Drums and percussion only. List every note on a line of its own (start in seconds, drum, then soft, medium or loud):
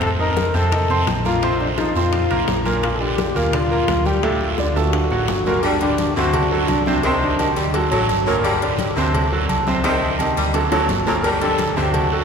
0.01 high bongo medium
0.01 high conga soft
0.01 high timbale loud
0.01 long guiro medium
0.19 high conga soft
0.36 high bongo medium
0.36 high conga loud
0.36 high timbale medium
0.36 short guiro medium
0.54 high conga soft
0.54 high timbale medium
0.54 short guiro medium
0.72 high bongo medium
0.72 high conga soft
0.72 low conga medium
0.72 high timbale medium
0.72 long guiro medium
0.90 high conga soft
0.90 low conga medium
1.07 high bongo medium
1.07 low bongo medium
1.07 high conga medium
1.07 high timbale medium
1.07 short guiro medium
1.25 high conga medium
1.25 short guiro medium
1.42 high bongo medium
1.42 high conga soft
1.42 high timbale medium
1.42 long guiro medium
1.60 high bongo soft
1.60 high conga soft
1.78 high bongo medium
1.78 high conga medium
1.78 high timbale medium
1.78 short guiro medium
1.95 high conga soft
1.95 short guiro medium
2.13 high bongo medium
2.13 high conga soft
2.13 high timbale medium
2.13 long guiro medium
2.30 high bongo soft
2.30 high conga soft
2.30 high timbale loud
2.48 high bongo medium
2.48 low bongo medium
2.48 high conga medium
2.48 short guiro medium
2.65 high bongo soft
2.65 high conga medium
2.65 high timbale medium
2.65 short guiro medium
2.83 high bongo medium
2.83 high timbale loud
2.83 long guiro medium
3.01 high conga soft
3.18 high bongo medium
3.18 high conga loud
3.18 high timbale medium
3.18 short guiro medium
3.36 high conga soft
3.36 high timbale medium
3.36 short guiro medium
3.53 high bongo medium
3.53 high conga soft
3.53 low conga medium
3.53 high timbale medium
3.53 long guiro medium
3.71 high conga soft
3.88 high bongo medium
3.88 low bongo medium
3.88 high conga medium
3.88 high timbale medium
3.88 low timbale medium
3.88 short guiro medium
4.05 high conga medium
4.05 short guiro medium
4.23 high bongo medium
4.23 high conga soft
4.23 high timbale medium
4.23 long guiro medium
4.40 high bongo soft
4.40 high conga soft
4.58 high bongo medium
4.58 high conga medium
4.58 high timbale medium
4.58 short guiro medium
4.75 high conga soft
4.75 high timbale medium
4.75 short guiro medium
4.93 high bongo medium
4.93 high conga soft
4.93 high timbale loud
4.93 long guiro medium
5.11 high bongo soft
5.11 low timbale medium
5.28 high bongo medium
5.28 low bongo medium
5.28 high conga medium
5.28 low timbale loud
5.28 short guiro medium
5.46 high bongo soft
5.46 high conga medium
5.46 low timbale medium
5.46 short guiro medium
5.63 cowbell loud
5.63 low agogo loud
5.63 long guiro medium
5.81 cowbell medium
5.81 high conga soft
5.98 cowbell medium
5.98 high conga loud
5.98 low agogo medium
5.98 short guiro medium
6.16 high conga soft
6.16 low agogo medium
6.16 short guiro medium
6.33 cowbell loud
6.33 high conga soft
6.33 low conga medium
6.33 low agogo loud
6.33 long guiro medium
6.51 high conga soft
6.68 cowbell medium
6.68 high conga medium
6.68 low agogo loud
6.68 short guiro medium
6.86 high conga medium
6.86 short guiro medium
7.03 cowbell loud
7.03 high conga soft
7.03 low agogo medium
7.03 long guiro medium
7.22 high conga soft
7.22 low agogo medium
7.39 cowbell medium
7.39 high conga medium
7.39 low agogo loud
7.39 short guiro medium
7.56 cowbell medium
7.56 high conga soft
7.56 short guiro medium
7.74 cowbell loud
7.74 high conga soft
7.74 low agogo medium
7.74 long guiro medium
7.92 cowbell medium
7.92 high conga soft
7.92 low agogo loud
8.09 cowbell medium
8.09 high conga medium
8.09 low agogo medium
8.09 short guiro medium
8.27 short guiro medium
8.44 cowbell loud
8.44 high conga soft
8.44 low agogo loud
8.44 long guiro medium
8.62 cowbell medium
8.62 high conga soft
8.79 cowbell medium
8.79 high conga medium
8.79 low agogo medium
8.79 short guiro medium
8.97 low agogo medium
8.97 short guiro medium
9.14 cowbell loud
9.14 high conga soft
9.14 low conga medium
9.14 low agogo loud
9.14 long guiro medium
9.32 high conga soft
9.49 cowbell medium
9.49 high conga medium
9.49 low agogo loud
9.49 short guiro medium
9.67 high conga medium
9.67 short guiro medium
9.84 cowbell loud
9.84 high conga soft
9.84 low agogo medium
9.84 long guiro medium
10.01 high conga soft
10.01 low agogo medium
10.19 cowbell medium
10.19 high conga medium
10.19 low agogo loud
10.19 short guiro medium
10.36 cowbell medium
10.36 high conga soft
10.36 short guiro medium
10.54 cowbell loud
10.54 high bongo medium
10.54 high conga soft
10.54 high timbale medium
10.54 low agogo medium
10.54 long guiro medium
10.71 cowbell medium
10.71 low bongo loud
10.71 high conga soft
10.71 high timbale medium
10.71 low agogo loud
10.89 cowbell medium
10.89 high conga medium
10.89 low timbale medium
10.89 low agogo medium
10.89 short guiro medium
11.06 low bongo medium
11.06 high conga medium
11.06 low timbale loud
11.06 short guiro medium
11.24 cowbell loud
11.24 high conga soft
11.24 low agogo loud
11.24 long guiro medium
11.42 cowbell medium
11.42 high conga soft
11.58 cowbell medium
11.58 high conga loud
11.58 low agogo medium
11.58 short guiro medium
11.77 high conga soft
11.77 low agogo medium
11.77 short guiro medium
11.94 cowbell loud
11.94 high conga soft
11.94 low conga medium
11.94 low agogo loud
11.94 long guiro medium
12.12 high conga soft